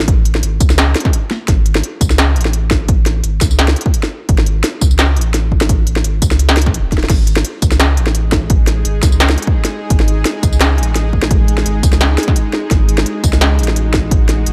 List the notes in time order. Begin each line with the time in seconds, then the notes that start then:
Already playing: A1
0.08 kick, closed hi-hat
0.25 closed hi-hat
0.35 snare
0.43 G#1, closed hi-hat
0.60 C#2, kick, closed hi-hat, tambourine
0.70 snare, tambourine
0.78 snare, closed hi-hat
0.96 snare, closed hi-hat
1.00 closed hi-hat
1.05 kick, snare
1.13 closed hi-hat
1.31 snare
1.48 G#1, kick, snare, closed hi-hat
1.66 closed hi-hat
1.75 snare
1.83 closed hi-hat
2.01 C#2, kick, closed hi-hat, tambourine
2.10 snare, tambourine
2.18 snare, closed hi-hat
2.36 A1, closed hi-hat
2.41 closed hi-hat
2.45 snare
2.53 closed hi-hat
2.71 kick, snare
2.88 kick, closed hi-hat
3.06 snare, closed hi-hat
3.24 G#1, closed hi-hat
3.41 C#2, kick, snare, closed hi-hat, tambourine
3.51 tambourine
3.59 snare, closed hi-hat
3.68 snare
3.76 closed hi-hat
3.81 closed hi-hat
3.86 kick
3.94 closed hi-hat
4.03 snare
4.29 G#1, kick, closed hi-hat
4.38 snare
4.46 closed hi-hat
4.64 snare, closed hi-hat
4.81 C#2, kick, tambourine
4.91 tambourine
4.99 snare, closed hi-hat
5.16 A1, closed hi-hat
5.21 closed hi-hat
5.34 snare, closed hi-hat
5.52 kick
5.61 snare
5.69 kick, closed hi-hat
5.87 closed hi-hat
5.96 snare
6.04 G#1, closed hi-hat
6.22 C#2, kick, closed hi-hat, tambourine
6.31 snare, tambourine
6.39 closed hi-hat
6.49 snare
6.57 snare, closed hi-hat
6.62 closed hi-hat
6.66 kick, snare
6.74 D#1, closed hi-hat
6.92 kick, snare, closed hi-hat
6.98 snare
7.04 snare
7.09 G#1 G#3 D#4 G#4, kick, snare, closed hi-hat, crash
7.27 closed hi-hat
7.37 snare
7.45 closed hi-hat
7.62 C#2, kick, closed hi-hat, tambourine
7.72 snare, tambourine
7.80 snare, closed hi-hat
7.97 A1, closed hi-hat
8.07 snare
8.15 closed hi-hat
8.32 kick, snare
8.50 kick, closed hi-hat
8.67 snare, closed hi-hat
8.85 G#1, closed hi-hat
9.03 C#2, kick, snare, closed hi-hat, tambourine
9.12 tambourine
9.20 snare, closed hi-hat
9.30 snare
9.38 closed hi-hat
9.42 closed hi-hat
9.47 kick
9.65 snare, closed hi-hat
9.90 G#1, kick, closed hi-hat
10.00 snare
10.08 closed hi-hat
10.25 snare, closed hi-hat
10.43 C#2, kick, closed hi-hat, tambourine
10.53 tambourine
10.61 snare, closed hi-hat
10.78 A1, closed hi-hat
10.83 closed hi-hat
10.96 snare, closed hi-hat
11.13 kick
11.23 snare
11.31 kick, closed hi-hat
11.48 closed hi-hat
11.58 snare
11.66 G#1, closed hi-hat
11.83 C#2, kick, closed hi-hat, tambourine
11.93 snare, tambourine
12.01 snare, closed hi-hat
12.18 snare, closed hi-hat
12.23 closed hi-hat
12.28 kick, snare
12.36 closed hi-hat
12.53 snare
12.71 G#1 F#4, kick, snare, closed hi-hat
12.89 closed hi-hat
12.98 snare
13.06 closed hi-hat
13.24 C#2, kick, closed hi-hat, tambourine
13.33 snare, tambourine
13.41 snare, closed hi-hat
13.59 A1, closed hi-hat
13.63 closed hi-hat
13.68 snare
13.76 closed hi-hat
13.94 kick, snare
14.11 kick, closed hi-hat
14.29 snare, closed hi-hat
14.46 G#1, closed hi-hat